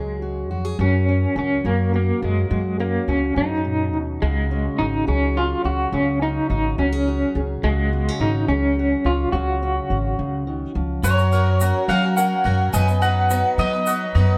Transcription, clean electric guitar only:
0, 0, Header, 1, 2, 480
1, 0, Start_track
1, 0, Key_signature, 6, "major"
1, 0, Tempo, 568182
1, 672, Time_signature, 6, 3, 24, 8
1, 12147, End_track
2, 0, Start_track
2, 0, Title_t, "Clean electric guitar"
2, 0, Program_c, 0, 27
2, 684, Note_on_c, 0, 61, 79
2, 1162, Note_off_c, 0, 61, 0
2, 1172, Note_on_c, 0, 61, 71
2, 1388, Note_off_c, 0, 61, 0
2, 1401, Note_on_c, 0, 58, 72
2, 1622, Note_off_c, 0, 58, 0
2, 1653, Note_on_c, 0, 58, 68
2, 1870, Note_off_c, 0, 58, 0
2, 1897, Note_on_c, 0, 56, 69
2, 2336, Note_off_c, 0, 56, 0
2, 2369, Note_on_c, 0, 58, 69
2, 2606, Note_on_c, 0, 61, 72
2, 2612, Note_off_c, 0, 58, 0
2, 2848, Note_off_c, 0, 61, 0
2, 2852, Note_on_c, 0, 63, 81
2, 3355, Note_off_c, 0, 63, 0
2, 3566, Note_on_c, 0, 56, 77
2, 4042, Note_on_c, 0, 63, 82
2, 4061, Note_off_c, 0, 56, 0
2, 4292, Note_off_c, 0, 63, 0
2, 4295, Note_on_c, 0, 61, 81
2, 4537, Note_on_c, 0, 65, 78
2, 4539, Note_off_c, 0, 61, 0
2, 4756, Note_off_c, 0, 65, 0
2, 4777, Note_on_c, 0, 66, 83
2, 5018, Note_on_c, 0, 61, 88
2, 5020, Note_off_c, 0, 66, 0
2, 5237, Note_off_c, 0, 61, 0
2, 5257, Note_on_c, 0, 63, 78
2, 5485, Note_off_c, 0, 63, 0
2, 5495, Note_on_c, 0, 63, 78
2, 5732, Note_off_c, 0, 63, 0
2, 5735, Note_on_c, 0, 61, 83
2, 6240, Note_off_c, 0, 61, 0
2, 6454, Note_on_c, 0, 56, 81
2, 6934, Note_on_c, 0, 63, 82
2, 6947, Note_off_c, 0, 56, 0
2, 7164, Note_off_c, 0, 63, 0
2, 7168, Note_on_c, 0, 61, 82
2, 7653, Note_on_c, 0, 65, 78
2, 7664, Note_off_c, 0, 61, 0
2, 7874, Note_off_c, 0, 65, 0
2, 7877, Note_on_c, 0, 66, 77
2, 9047, Note_off_c, 0, 66, 0
2, 9329, Note_on_c, 0, 73, 94
2, 10011, Note_off_c, 0, 73, 0
2, 10043, Note_on_c, 0, 77, 101
2, 10265, Note_off_c, 0, 77, 0
2, 10280, Note_on_c, 0, 78, 100
2, 10755, Note_off_c, 0, 78, 0
2, 10759, Note_on_c, 0, 80, 109
2, 10981, Note_off_c, 0, 80, 0
2, 11000, Note_on_c, 0, 78, 101
2, 11443, Note_off_c, 0, 78, 0
2, 11485, Note_on_c, 0, 75, 102
2, 11983, Note_off_c, 0, 75, 0
2, 12147, End_track
0, 0, End_of_file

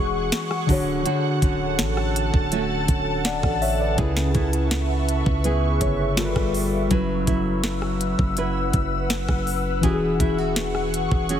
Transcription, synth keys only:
0, 0, Header, 1, 2, 480
1, 0, Start_track
1, 0, Tempo, 731707
1, 692, Time_signature, 4, 2, 24, 8
1, 7478, End_track
2, 0, Start_track
2, 0, Title_t, "Synth keys"
2, 0, Program_c, 0, 88
2, 0, Control_c, 0, 64, 127
2, 0, Note_on_c, 0, 52, 79
2, 0, Note_on_c, 0, 61, 65
2, 0, Note_on_c, 0, 66, 71
2, 0, Note_on_c, 0, 68, 88
2, 417, Note_off_c, 0, 52, 0
2, 423, Note_off_c, 0, 61, 0
2, 429, Note_off_c, 0, 66, 0
2, 434, Note_on_c, 0, 50, 83
2, 436, Note_off_c, 0, 68, 0
2, 446, Note_on_c, 0, 62, 73
2, 459, Control_c, 0, 64, 0
2, 460, Note_on_c, 0, 66, 74
2, 473, Note_on_c, 0, 73, 88
2, 592, Control_c, 0, 64, 127
2, 2116, Note_off_c, 0, 73, 0
2, 2135, Note_on_c, 0, 78, 70
2, 2138, Note_on_c, 0, 74, 58
2, 2337, Note_off_c, 0, 50, 0
2, 2343, Note_off_c, 0, 62, 0
2, 2350, Note_off_c, 0, 66, 0
2, 2362, Note_off_c, 0, 78, 0
2, 2363, Note_off_c, 0, 74, 0
2, 2372, Note_on_c, 0, 76, 80
2, 2376, Note_on_c, 0, 73, 67
2, 2486, Note_off_c, 0, 76, 0
2, 2488, Note_off_c, 0, 73, 0
2, 2494, Note_on_c, 0, 74, 64
2, 2498, Note_on_c, 0, 71, 57
2, 2592, Note_on_c, 0, 49, 76
2, 2605, Note_on_c, 0, 61, 69
2, 2618, Note_on_c, 0, 64, 72
2, 2621, Control_c, 0, 64, 0
2, 2624, Note_off_c, 0, 71, 0
2, 2631, Note_on_c, 0, 71, 84
2, 2721, Note_off_c, 0, 74, 0
2, 2754, Control_c, 0, 64, 127
2, 3563, Note_off_c, 0, 71, 0
2, 3574, Note_on_c, 0, 71, 71
2, 3577, Note_on_c, 0, 68, 59
2, 3801, Note_off_c, 0, 71, 0
2, 3803, Note_off_c, 0, 68, 0
2, 3812, Note_on_c, 0, 73, 72
2, 3926, Note_off_c, 0, 73, 0
2, 3932, Note_on_c, 0, 71, 66
2, 3936, Note_on_c, 0, 68, 57
2, 4016, Note_off_c, 0, 49, 0
2, 4022, Note_off_c, 0, 61, 0
2, 4029, Note_off_c, 0, 64, 0
2, 4041, Note_on_c, 0, 55, 81
2, 4048, Note_on_c, 0, 65, 74
2, 4056, Note_on_c, 0, 69, 73
2, 4060, Note_on_c, 0, 70, 71
2, 4061, Control_c, 0, 64, 0
2, 4095, Note_off_c, 0, 71, 0
2, 4098, Note_off_c, 0, 70, 0
2, 4103, Note_on_c, 0, 71, 91
2, 4157, Control_c, 0, 64, 127
2, 4162, Note_off_c, 0, 68, 0
2, 4514, Note_on_c, 0, 54, 73
2, 4527, Note_off_c, 0, 55, 0
2, 4527, Note_on_c, 0, 61, 71
2, 4530, Note_off_c, 0, 65, 0
2, 4534, Note_off_c, 0, 69, 0
2, 4539, Note_on_c, 0, 64, 65
2, 4541, Control_c, 0, 64, 0
2, 4546, Note_off_c, 0, 71, 0
2, 4553, Note_on_c, 0, 71, 82
2, 4650, Control_c, 0, 64, 127
2, 6417, Note_off_c, 0, 54, 0
2, 6423, Note_off_c, 0, 61, 0
2, 6429, Note_off_c, 0, 64, 0
2, 6433, Note_on_c, 0, 52, 79
2, 6436, Note_off_c, 0, 71, 0
2, 6447, Note_on_c, 0, 61, 71
2, 6460, Control_c, 0, 64, 0
2, 6460, Note_on_c, 0, 66, 69
2, 6473, Note_on_c, 0, 67, 67
2, 6505, Note_off_c, 0, 67, 0
2, 6514, Note_on_c, 0, 68, 84
2, 6568, Control_c, 0, 64, 127
2, 7478, Note_off_c, 0, 52, 0
2, 7478, Note_off_c, 0, 61, 0
2, 7478, Note_off_c, 0, 66, 0
2, 7478, Note_off_c, 0, 68, 0
2, 7478, End_track
0, 0, End_of_file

